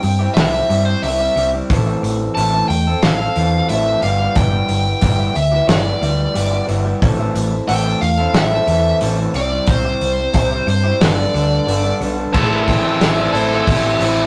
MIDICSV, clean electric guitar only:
0, 0, Header, 1, 3, 480
1, 0, Start_track
1, 0, Key_signature, 0, "minor"
1, 0, Tempo, 665927
1, 1224, Time_signature, 4, 2, 24, 8
1, 10282, End_track
2, 0, Start_track
2, 0, Title_t, "Clean electric guitar"
2, 0, Program_c, 0, 27
2, 0, Note_on_c, 0, 48, 85
2, 137, Note_off_c, 0, 48, 0
2, 137, Note_on_c, 0, 67, 74
2, 147, Note_on_c, 0, 64, 58
2, 155, Note_on_c, 0, 60, 56
2, 370, Note_off_c, 0, 67, 0
2, 379, Note_on_c, 0, 67, 72
2, 387, Note_off_c, 0, 64, 0
2, 389, Note_off_c, 0, 60, 0
2, 390, Note_on_c, 0, 64, 57
2, 397, Note_on_c, 0, 60, 55
2, 500, Note_off_c, 0, 60, 0
2, 503, Note_on_c, 0, 55, 75
2, 509, Note_on_c, 0, 60, 71
2, 511, Note_off_c, 0, 64, 0
2, 512, Note_off_c, 0, 67, 0
2, 514, Note_on_c, 0, 64, 81
2, 520, Note_on_c, 0, 67, 79
2, 739, Note_off_c, 0, 55, 0
2, 739, Note_off_c, 0, 60, 0
2, 743, Note_on_c, 0, 48, 82
2, 747, Note_on_c, 0, 55, 89
2, 748, Note_on_c, 0, 60, 89
2, 752, Note_off_c, 0, 64, 0
2, 753, Note_off_c, 0, 67, 0
2, 755, Note_on_c, 0, 64, 87
2, 762, Note_on_c, 0, 67, 93
2, 850, Note_off_c, 0, 67, 0
2, 859, Note_on_c, 0, 67, 70
2, 864, Note_off_c, 0, 64, 0
2, 865, Note_off_c, 0, 60, 0
2, 867, Note_on_c, 0, 64, 59
2, 874, Note_on_c, 0, 60, 60
2, 972, Note_off_c, 0, 55, 0
2, 979, Note_off_c, 0, 60, 0
2, 981, Note_on_c, 0, 55, 71
2, 988, Note_on_c, 0, 60, 79
2, 991, Note_off_c, 0, 64, 0
2, 991, Note_off_c, 0, 67, 0
2, 994, Note_on_c, 0, 64, 69
2, 1000, Note_on_c, 0, 67, 84
2, 1096, Note_off_c, 0, 67, 0
2, 1104, Note_off_c, 0, 48, 0
2, 1105, Note_on_c, 0, 67, 58
2, 1109, Note_off_c, 0, 64, 0
2, 1112, Note_on_c, 0, 64, 60
2, 1114, Note_off_c, 0, 60, 0
2, 1122, Note_on_c, 0, 60, 45
2, 1208, Note_off_c, 0, 55, 0
2, 1210, Note_off_c, 0, 67, 0
2, 1219, Note_off_c, 0, 60, 0
2, 1220, Note_on_c, 0, 45, 78
2, 1230, Note_on_c, 0, 52, 79
2, 1232, Note_on_c, 0, 60, 78
2, 1235, Note_off_c, 0, 64, 0
2, 1238, Note_on_c, 0, 64, 85
2, 1241, Note_on_c, 0, 69, 95
2, 1332, Note_off_c, 0, 69, 0
2, 1341, Note_on_c, 0, 69, 69
2, 1347, Note_off_c, 0, 60, 0
2, 1347, Note_off_c, 0, 64, 0
2, 1350, Note_on_c, 0, 64, 59
2, 1355, Note_on_c, 0, 60, 56
2, 1582, Note_off_c, 0, 45, 0
2, 1703, Note_off_c, 0, 60, 0
2, 1703, Note_on_c, 0, 45, 88
2, 1705, Note_off_c, 0, 52, 0
2, 1708, Note_on_c, 0, 52, 91
2, 1712, Note_off_c, 0, 64, 0
2, 1712, Note_off_c, 0, 69, 0
2, 1712, Note_on_c, 0, 60, 86
2, 1715, Note_on_c, 0, 64, 87
2, 1720, Note_on_c, 0, 69, 104
2, 1817, Note_off_c, 0, 69, 0
2, 1826, Note_on_c, 0, 69, 63
2, 1833, Note_off_c, 0, 64, 0
2, 1836, Note_on_c, 0, 64, 61
2, 1837, Note_off_c, 0, 60, 0
2, 1845, Note_on_c, 0, 60, 51
2, 1935, Note_off_c, 0, 60, 0
2, 1940, Note_off_c, 0, 69, 0
2, 1943, Note_off_c, 0, 52, 0
2, 1946, Note_off_c, 0, 64, 0
2, 2064, Note_off_c, 0, 45, 0
2, 2070, Note_on_c, 0, 69, 72
2, 2087, Note_on_c, 0, 60, 52
2, 2305, Note_off_c, 0, 69, 0
2, 2314, Note_on_c, 0, 69, 65
2, 2324, Note_off_c, 0, 60, 0
2, 2333, Note_on_c, 0, 60, 45
2, 2426, Note_off_c, 0, 60, 0
2, 2426, Note_on_c, 0, 52, 81
2, 2435, Note_off_c, 0, 69, 0
2, 2435, Note_on_c, 0, 60, 74
2, 2444, Note_on_c, 0, 69, 78
2, 2667, Note_on_c, 0, 45, 78
2, 2669, Note_off_c, 0, 52, 0
2, 2670, Note_off_c, 0, 60, 0
2, 2672, Note_on_c, 0, 52, 85
2, 2676, Note_off_c, 0, 69, 0
2, 2678, Note_on_c, 0, 60, 92
2, 2682, Note_on_c, 0, 64, 87
2, 2685, Note_on_c, 0, 69, 84
2, 2776, Note_off_c, 0, 69, 0
2, 2785, Note_on_c, 0, 69, 75
2, 2793, Note_off_c, 0, 64, 0
2, 2796, Note_on_c, 0, 64, 56
2, 2797, Note_off_c, 0, 60, 0
2, 2805, Note_on_c, 0, 60, 49
2, 2890, Note_off_c, 0, 69, 0
2, 2891, Note_off_c, 0, 45, 0
2, 2899, Note_off_c, 0, 52, 0
2, 2900, Note_off_c, 0, 60, 0
2, 2902, Note_on_c, 0, 55, 96
2, 2909, Note_on_c, 0, 59, 90
2, 2919, Note_on_c, 0, 67, 111
2, 3019, Note_off_c, 0, 67, 0
2, 3027, Note_on_c, 0, 67, 63
2, 3032, Note_off_c, 0, 64, 0
2, 3035, Note_on_c, 0, 64, 57
2, 3036, Note_off_c, 0, 59, 0
2, 3044, Note_on_c, 0, 59, 51
2, 3128, Note_off_c, 0, 55, 0
2, 3134, Note_off_c, 0, 59, 0
2, 3137, Note_on_c, 0, 55, 76
2, 3142, Note_on_c, 0, 59, 88
2, 3144, Note_off_c, 0, 67, 0
2, 3145, Note_off_c, 0, 64, 0
2, 3148, Note_on_c, 0, 64, 92
2, 3153, Note_on_c, 0, 67, 89
2, 3239, Note_off_c, 0, 67, 0
2, 3248, Note_on_c, 0, 67, 76
2, 3255, Note_off_c, 0, 59, 0
2, 3257, Note_off_c, 0, 64, 0
2, 3260, Note_on_c, 0, 64, 60
2, 3264, Note_on_c, 0, 59, 53
2, 3500, Note_off_c, 0, 55, 0
2, 3611, Note_off_c, 0, 59, 0
2, 3612, Note_on_c, 0, 55, 91
2, 3618, Note_off_c, 0, 64, 0
2, 3619, Note_off_c, 0, 67, 0
2, 3619, Note_on_c, 0, 59, 91
2, 3621, Note_on_c, 0, 64, 93
2, 3627, Note_on_c, 0, 67, 94
2, 3728, Note_off_c, 0, 67, 0
2, 3737, Note_on_c, 0, 67, 72
2, 3741, Note_off_c, 0, 64, 0
2, 3744, Note_on_c, 0, 64, 66
2, 3745, Note_off_c, 0, 59, 0
2, 3754, Note_on_c, 0, 59, 55
2, 3846, Note_off_c, 0, 55, 0
2, 3848, Note_off_c, 0, 59, 0
2, 3853, Note_off_c, 0, 67, 0
2, 3855, Note_off_c, 0, 64, 0
2, 3975, Note_on_c, 0, 67, 64
2, 3984, Note_on_c, 0, 64, 65
2, 3995, Note_on_c, 0, 59, 50
2, 4209, Note_off_c, 0, 67, 0
2, 4218, Note_on_c, 0, 67, 64
2, 4223, Note_off_c, 0, 64, 0
2, 4224, Note_off_c, 0, 59, 0
2, 4226, Note_on_c, 0, 64, 65
2, 4233, Note_on_c, 0, 59, 54
2, 4332, Note_off_c, 0, 59, 0
2, 4333, Note_on_c, 0, 55, 67
2, 4341, Note_on_c, 0, 59, 74
2, 4345, Note_off_c, 0, 67, 0
2, 4346, Note_off_c, 0, 64, 0
2, 4349, Note_on_c, 0, 64, 67
2, 4354, Note_on_c, 0, 67, 75
2, 4562, Note_off_c, 0, 55, 0
2, 4566, Note_off_c, 0, 59, 0
2, 4570, Note_on_c, 0, 55, 86
2, 4575, Note_on_c, 0, 59, 90
2, 4577, Note_off_c, 0, 67, 0
2, 4580, Note_off_c, 0, 64, 0
2, 4583, Note_on_c, 0, 64, 93
2, 4585, Note_on_c, 0, 67, 94
2, 4686, Note_off_c, 0, 67, 0
2, 4694, Note_on_c, 0, 67, 70
2, 4701, Note_off_c, 0, 59, 0
2, 4703, Note_off_c, 0, 64, 0
2, 4706, Note_on_c, 0, 64, 61
2, 4710, Note_on_c, 0, 59, 58
2, 4799, Note_off_c, 0, 55, 0
2, 4804, Note_off_c, 0, 59, 0
2, 4807, Note_on_c, 0, 55, 78
2, 4813, Note_on_c, 0, 59, 79
2, 4815, Note_off_c, 0, 64, 0
2, 4816, Note_off_c, 0, 67, 0
2, 4818, Note_on_c, 0, 64, 89
2, 4824, Note_on_c, 0, 67, 89
2, 4925, Note_off_c, 0, 67, 0
2, 4934, Note_on_c, 0, 67, 69
2, 4940, Note_off_c, 0, 64, 0
2, 4943, Note_on_c, 0, 64, 54
2, 4944, Note_off_c, 0, 59, 0
2, 4953, Note_on_c, 0, 59, 44
2, 5040, Note_off_c, 0, 55, 0
2, 5044, Note_off_c, 0, 67, 0
2, 5053, Note_off_c, 0, 59, 0
2, 5056, Note_on_c, 0, 45, 89
2, 5060, Note_on_c, 0, 52, 99
2, 5063, Note_on_c, 0, 60, 90
2, 5065, Note_off_c, 0, 64, 0
2, 5068, Note_on_c, 0, 64, 88
2, 5074, Note_on_c, 0, 69, 91
2, 5173, Note_off_c, 0, 69, 0
2, 5181, Note_on_c, 0, 69, 73
2, 5182, Note_off_c, 0, 64, 0
2, 5189, Note_off_c, 0, 60, 0
2, 5190, Note_on_c, 0, 64, 72
2, 5197, Note_on_c, 0, 60, 62
2, 5419, Note_off_c, 0, 45, 0
2, 5421, Note_off_c, 0, 52, 0
2, 5529, Note_on_c, 0, 45, 93
2, 5530, Note_off_c, 0, 60, 0
2, 5532, Note_off_c, 0, 64, 0
2, 5533, Note_on_c, 0, 52, 93
2, 5538, Note_off_c, 0, 69, 0
2, 5539, Note_on_c, 0, 60, 97
2, 5541, Note_on_c, 0, 64, 107
2, 5546, Note_on_c, 0, 69, 115
2, 5649, Note_off_c, 0, 69, 0
2, 5658, Note_on_c, 0, 69, 71
2, 5664, Note_off_c, 0, 60, 0
2, 5672, Note_on_c, 0, 60, 58
2, 5767, Note_off_c, 0, 52, 0
2, 5769, Note_off_c, 0, 60, 0
2, 5773, Note_off_c, 0, 64, 0
2, 5773, Note_off_c, 0, 69, 0
2, 5894, Note_on_c, 0, 69, 76
2, 5895, Note_off_c, 0, 45, 0
2, 5908, Note_on_c, 0, 64, 62
2, 5914, Note_on_c, 0, 60, 59
2, 6121, Note_off_c, 0, 69, 0
2, 6130, Note_on_c, 0, 69, 71
2, 6132, Note_off_c, 0, 64, 0
2, 6141, Note_off_c, 0, 60, 0
2, 6141, Note_on_c, 0, 64, 60
2, 6150, Note_on_c, 0, 60, 61
2, 6254, Note_off_c, 0, 60, 0
2, 6254, Note_on_c, 0, 52, 75
2, 6260, Note_off_c, 0, 64, 0
2, 6263, Note_off_c, 0, 69, 0
2, 6263, Note_on_c, 0, 60, 70
2, 6268, Note_on_c, 0, 64, 76
2, 6271, Note_on_c, 0, 69, 84
2, 6488, Note_off_c, 0, 52, 0
2, 6491, Note_on_c, 0, 45, 81
2, 6492, Note_off_c, 0, 60, 0
2, 6496, Note_off_c, 0, 64, 0
2, 6497, Note_on_c, 0, 52, 100
2, 6501, Note_on_c, 0, 60, 96
2, 6502, Note_off_c, 0, 69, 0
2, 6504, Note_on_c, 0, 64, 99
2, 6511, Note_on_c, 0, 69, 105
2, 6606, Note_off_c, 0, 69, 0
2, 6615, Note_off_c, 0, 64, 0
2, 6615, Note_on_c, 0, 69, 68
2, 6624, Note_off_c, 0, 60, 0
2, 6624, Note_on_c, 0, 64, 63
2, 6633, Note_on_c, 0, 60, 58
2, 6721, Note_off_c, 0, 45, 0
2, 6723, Note_off_c, 0, 69, 0
2, 6724, Note_off_c, 0, 52, 0
2, 6728, Note_off_c, 0, 64, 0
2, 6732, Note_off_c, 0, 60, 0
2, 6732, Note_on_c, 0, 48, 109
2, 6737, Note_on_c, 0, 55, 95
2, 6744, Note_on_c, 0, 60, 95
2, 6744, Note_on_c, 0, 64, 104
2, 6749, Note_on_c, 0, 67, 113
2, 6840, Note_off_c, 0, 67, 0
2, 6848, Note_on_c, 0, 67, 61
2, 6852, Note_off_c, 0, 64, 0
2, 6860, Note_off_c, 0, 60, 0
2, 6861, Note_on_c, 0, 64, 63
2, 6868, Note_on_c, 0, 60, 57
2, 6961, Note_off_c, 0, 48, 0
2, 6969, Note_off_c, 0, 55, 0
2, 6970, Note_on_c, 0, 48, 89
2, 6972, Note_off_c, 0, 60, 0
2, 6976, Note_off_c, 0, 64, 0
2, 6977, Note_on_c, 0, 55, 87
2, 6978, Note_off_c, 0, 67, 0
2, 6981, Note_on_c, 0, 60, 96
2, 6984, Note_on_c, 0, 64, 97
2, 6987, Note_on_c, 0, 67, 102
2, 7090, Note_off_c, 0, 67, 0
2, 7099, Note_on_c, 0, 67, 80
2, 7100, Note_off_c, 0, 64, 0
2, 7109, Note_off_c, 0, 60, 0
2, 7109, Note_on_c, 0, 64, 62
2, 7118, Note_on_c, 0, 60, 69
2, 7335, Note_off_c, 0, 48, 0
2, 7338, Note_off_c, 0, 55, 0
2, 7447, Note_on_c, 0, 48, 91
2, 7449, Note_off_c, 0, 60, 0
2, 7454, Note_off_c, 0, 64, 0
2, 7454, Note_on_c, 0, 55, 91
2, 7458, Note_off_c, 0, 67, 0
2, 7458, Note_on_c, 0, 60, 102
2, 7463, Note_on_c, 0, 64, 105
2, 7467, Note_on_c, 0, 67, 100
2, 7567, Note_off_c, 0, 67, 0
2, 7576, Note_on_c, 0, 67, 80
2, 7578, Note_off_c, 0, 64, 0
2, 7586, Note_on_c, 0, 64, 61
2, 7588, Note_off_c, 0, 60, 0
2, 7597, Note_on_c, 0, 60, 61
2, 7684, Note_off_c, 0, 55, 0
2, 7688, Note_off_c, 0, 64, 0
2, 7690, Note_off_c, 0, 67, 0
2, 7691, Note_off_c, 0, 60, 0
2, 7809, Note_on_c, 0, 67, 67
2, 7813, Note_off_c, 0, 48, 0
2, 7818, Note_on_c, 0, 64, 65
2, 7828, Note_on_c, 0, 60, 61
2, 7920, Note_off_c, 0, 67, 0
2, 7924, Note_off_c, 0, 64, 0
2, 7927, Note_on_c, 0, 55, 88
2, 7929, Note_off_c, 0, 60, 0
2, 7935, Note_on_c, 0, 59, 82
2, 7941, Note_on_c, 0, 62, 95
2, 7947, Note_on_c, 0, 69, 96
2, 8042, Note_off_c, 0, 69, 0
2, 8051, Note_off_c, 0, 62, 0
2, 8051, Note_on_c, 0, 69, 68
2, 8057, Note_off_c, 0, 59, 0
2, 8060, Note_on_c, 0, 62, 64
2, 8066, Note_on_c, 0, 59, 53
2, 8164, Note_off_c, 0, 55, 0
2, 8171, Note_off_c, 0, 59, 0
2, 8173, Note_on_c, 0, 55, 75
2, 8174, Note_off_c, 0, 62, 0
2, 8179, Note_on_c, 0, 59, 67
2, 8183, Note_on_c, 0, 62, 90
2, 8184, Note_off_c, 0, 69, 0
2, 8192, Note_on_c, 0, 69, 83
2, 8402, Note_off_c, 0, 55, 0
2, 8406, Note_off_c, 0, 59, 0
2, 8411, Note_on_c, 0, 55, 78
2, 8415, Note_off_c, 0, 62, 0
2, 8415, Note_on_c, 0, 59, 99
2, 8420, Note_off_c, 0, 69, 0
2, 8424, Note_on_c, 0, 62, 92
2, 8429, Note_on_c, 0, 69, 111
2, 8523, Note_off_c, 0, 69, 0
2, 8532, Note_off_c, 0, 62, 0
2, 8532, Note_on_c, 0, 69, 75
2, 8541, Note_off_c, 0, 59, 0
2, 8541, Note_on_c, 0, 62, 64
2, 8550, Note_on_c, 0, 59, 58
2, 8645, Note_off_c, 0, 55, 0
2, 8652, Note_off_c, 0, 59, 0
2, 8654, Note_on_c, 0, 55, 74
2, 8658, Note_off_c, 0, 62, 0
2, 8661, Note_on_c, 0, 59, 84
2, 8667, Note_on_c, 0, 62, 85
2, 8668, Note_off_c, 0, 69, 0
2, 8676, Note_on_c, 0, 69, 80
2, 8764, Note_off_c, 0, 69, 0
2, 8772, Note_on_c, 0, 69, 62
2, 8774, Note_off_c, 0, 62, 0
2, 8782, Note_off_c, 0, 59, 0
2, 8782, Note_on_c, 0, 62, 58
2, 8790, Note_on_c, 0, 59, 55
2, 8881, Note_off_c, 0, 69, 0
2, 8882, Note_off_c, 0, 55, 0
2, 8886, Note_off_c, 0, 62, 0
2, 8890, Note_off_c, 0, 59, 0
2, 8896, Note_on_c, 0, 45, 71
2, 9139, Note_on_c, 0, 52, 59
2, 9381, Note_on_c, 0, 60, 75
2, 9624, Note_on_c, 0, 69, 76
2, 9859, Note_on_c, 0, 64, 72
2, 10096, Note_off_c, 0, 60, 0
2, 10098, Note_off_c, 0, 45, 0
2, 10105, Note_on_c, 0, 60, 68
2, 10282, Note_off_c, 0, 52, 0
2, 10282, Note_off_c, 0, 60, 0
2, 10282, Note_off_c, 0, 64, 0
2, 10282, Note_off_c, 0, 69, 0
2, 10282, End_track
3, 0, Start_track
3, 0, Title_t, "Muted clean electric guitar strokes"
3, 17, Note_on_c, 9, 29, 41
3, 89, Note_off_c, 9, 29, 0
3, 1944, Note_on_c, 9, 29, 47
3, 2016, Note_off_c, 9, 29, 0
3, 3854, Note_on_c, 9, 29, 50
3, 3926, Note_off_c, 9, 29, 0
3, 5776, Note_on_c, 9, 29, 46
3, 5848, Note_off_c, 9, 29, 0
3, 7692, Note_on_c, 9, 29, 48
3, 7764, Note_off_c, 9, 29, 0
3, 10282, End_track
0, 0, End_of_file